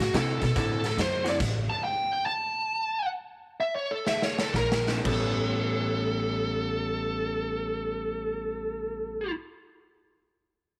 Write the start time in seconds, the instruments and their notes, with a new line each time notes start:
0.00 upright bass A2, lead electric guitar F#4, muted clean electric guitar stroke, snare, closed hi-hat
0.14 upright bass C3, clean electric guitar D3 C4 E4 F#4, lead electric guitar A4, snare, closed hi-hat
0.42 upright bass B2, lead electric guitar A4, muted clean electric guitar stroke, kick, snare, closed hi-hat
0.56 upright bass A2, clean electric guitar D3 C4 E4 F#4, lead electric guitar A4, kick, snare, closed hi-hat
0.84 lead electric guitar A4, muted clean electric guitar stroke, snare, closed hi-hat
0.97 upright bass F#2, lead electric guitar C5, muted clean electric guitar stroke, snare, closed hi-hat
1.24 clean electric guitar D3 C4 E4 F#4, snare, closed hi-hat
1.29 lead electric guitar D5
1.40 upright bass A1, muted clean electric guitar stroke, kick, snare, closed hi-hat, crash
1.70 lead electric guitar A5
1.84 lead electric guitar G5
2.13 lead electric guitar G5
2.26 lead electric guitar A5
3.60 lead electric guitar E5
3.76 lead electric guitar C#5
3.91 lead electric guitar A4
4.07 lead electric guitar E5, snare
4.22 lead electric guitar C#5, snare
4.39 lead electric guitar A4, snare
4.54 upright bass A#1, lead electric guitar A#4, muted clean electric guitar stroke, kick, snare
4.72 snare
4.88 clean electric guitar A#2 G#3 C4 D4, snare
5.04 upright bass A1, clean electric guitar A2 G3 B3 C#4, lead electric guitar A4, kick, crash